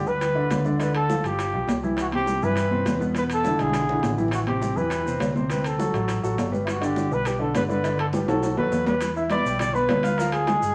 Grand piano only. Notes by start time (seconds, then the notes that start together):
0.06 G3 G4 B4
0.35 D3 D4 D5
0.65 D3 D4 D5
0.79 D3 D4 D5
1.09 F3 F4 A4
1.24 F3 F4 G4
1.53 F3 F4 G4
1.83 E3 E4 G4
2.13 C3 C4 C5
2.43 E3 E4 G4
2.71 C3 C4 C5
3.01 B2 B3 B4
3.15 B2 B3 B4
3.44 D3 D4 E4
3.59 D3 D4 E4
3.89 D3 D4 E4
4.18 E3 E4 G4
4.47 C3 C4 C5
4.76 E3 E4 G4
5.06 C3 C4 C5
5.36 C3 C4 C5
5.50 C3 C4 C5
5.79 F#3 F#4 A4
5.94 F#3 F#4 A4
6.23 F#3 F#4 A4
6.51 G3 G4 B4
6.81 D3 D4 D5
7.11 G3 G4 B4
7.39 D3 D4 D5
7.69 D3 D4 D5
7.84 D3 D4 D5
8.13 G3 G4 B4
8.28 F#3 F#4 A4
8.58 F#3 F#4 A4
8.86 G3 G4 B4
9.16 E4 E5 E6
9.31 B3 B4 B5
9.46 G3 G4 G5
9.74 B3 B4 B5
10.03 F4 F5 F6
10.18 F3 F4 F5
10.48 G#3 G#4 G#5